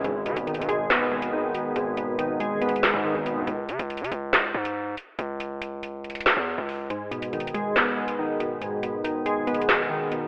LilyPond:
<<
  \new Staff \with { instrumentName = "Synth keys" } { \clef bass \time 4/4 \key gis \minor \tempo 4 = 140 gis,8 b,8 dis8 gis8 b8 gis8 dis8 b,8 | gis,8 b,8 dis8 gis8 b8 gis8 dis8 b,8 | r1 | r1 |
gis,8 b,8 dis8 gis8 b8 gis8 dis8 b,8 | gis,8 b,8 dis8 gis8 b8 gis8 dis8 b,8 | }
  \new Staff \with { instrumentName = "808-style bass" } { \clef bass \time 4/4 \key gis \minor gis,,8 dis16 gis,,8 gis,16 gis,,4 gis,,4 r8 | gis,,4.~ gis,,16 a,,8 gis,,8 gis,8 gis,,8 gis,16 | cis,8 cis16 cis,8 cis16 cis,4 gis,4 r8 | cis,2~ cis,8. e,8 cis,8. |
r1 | r1 | }
  \new DrumStaff \with { instrumentName = "Drums" } \drummode { \time 4/4 hh8 hh16 hh16 \tuplet 3/2 { hh16 hh16 hh16 hh16 r16 r16 } <hc sn>8. hh16 r8 hh8 | hh8 hh8 hh8 hh8 \tuplet 3/2 { hh16 hh16 hh16 <hc sn>16 r16 r16 } r8 hh8 | hh8 hh16 hh16 \tuplet 3/2 { hh16 hh16 hh16 hh16 r16 r16 } <hc sn>8. hh16 r8 hh8 | hh8 hh8 hh8 hh8 hh32 hh32 hh32 hh32 <hc sn>8 r8 hho8 |
hh8 hh16 hh16 \tuplet 3/2 { hh16 hh16 hh16 hh16 r16 r16 } <hc sn>8. hh16 r8 hh8 | hh8 hh8 hh8 hh8 \tuplet 3/2 { hh16 hh16 hh16 <hc sn>16 r16 r16 } r8 hh8 | }
>>